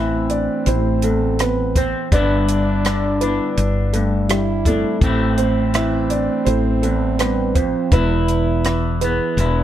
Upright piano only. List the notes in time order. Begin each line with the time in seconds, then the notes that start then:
Already playing: E4 E5
0.30 D4 D5
0.67 C4 E4 C5
1.04 A3 A4
1.40 B3 B4
1.77 C4 C5
2.13 D4 B4 D5
3.21 B3 E4 B4
3.93 A3 A4
4.29 G3 G4
4.66 A3 C4 E4 A4
5.37 C4 C5
5.74 E4 E5
6.10 D4 D5
6.45 C4 E4 A4 C5
6.82 A3 A4
7.19 B3 B4
7.55 C4 C5
7.93 B3 E4 B4
9.01 B3 E4 G#4 B4